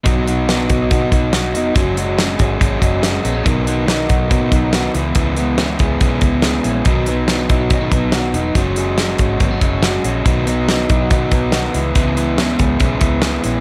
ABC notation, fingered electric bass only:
X:1
M:4/4
L:1/8
Q:1/4=141
K:B
V:1 name="Fingered electric bass" clef=bass
B,,,3 B,,, B,, B,,,2 E,,, | F,,,3 G,,, G,,, F,,,2 A,,, | B,,,3 B,,, B,, B,,,2 C,, | C,,3 C,, B,,, C,,2 A,,, |
B,,,3 B,,, B,, B,,,2 E,,, | F,,,3 G,,, G,,, F,,,2 A,,, | B,,,3 B,,, B,, B,,,2 C,, | C,,3 C,, B,,, C,,2 A,,, |]